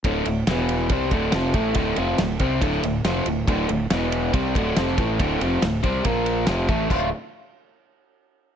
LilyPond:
<<
  \new Staff \with { instrumentName = "Overdriven electric guitar" } { \clef bass \time 4/4 \key d \minor \tempo 4 = 140 <d, a, d>8 <d, a,>8 <e, b, e>4 <c g c'>8 <d, a, d>8 <f, c f>8 <a, e a>8 | <d, a, d>8 <f, c f>8 <d, a,>8 <c g c'>8 <d, a, d>8 <d, a,>8 <f, c f>8 <d, a,>8 | <d, a, d>8 <d, a,>8 <e, b, e>4 <c g c'>8 <d, a, d>8 <f, c f>8 <a, e a>8 | <d, a, d>8 <f, c f>8 <d, a,>8 <c g c'>8 <bes, f bes>4 <f, c f>8 <a, e a>8 |
<d, a, d a f'>8 r2. r8 | }
  \new Staff \with { instrumentName = "Fingered electric bass" } { \clef bass \time 4/4 \key d \minor d,,8 d,,8 e,,4 c,8 d,,8 f,,8 a,,8 | d,,8 f,,8 d,,8 c,8 d,,8 d,,8 f,,8 d,,8 | d,,8 d,,8 e,,4 c,8 d,,8 f,,8 a,,8 | d,,8 f,,8 d,,8 c,8 bes,,4 f,,8 a,,8 |
d,,8 r2. r8 | }
  \new DrumStaff \with { instrumentName = "Drums" } \drummode { \time 4/4 <bd cymr>8 cymr8 <cymr sn>8 cymr8 <bd cymr>8 <bd cymr>8 <cymr sn>8 <bd cymr>8 | <bd cymr>8 cymr8 <cymr sn>8 <bd cymr>8 <bd cymr>8 cymr8 <cymr sn>8 cymr8 | <bd cymr>8 cymr8 <cymr sn>8 cymr8 <bd cymr>8 <bd cymr>8 <cymr sn>16 sn16 <bd cymr>8 | <bd cymr>8 cymr8 <cymr sn>8 <bd cymr>8 <bd cymr>8 cymr8 <cymr sn>8 <bd cymr>8 |
<cymc bd>4 r4 r4 r4 | }
>>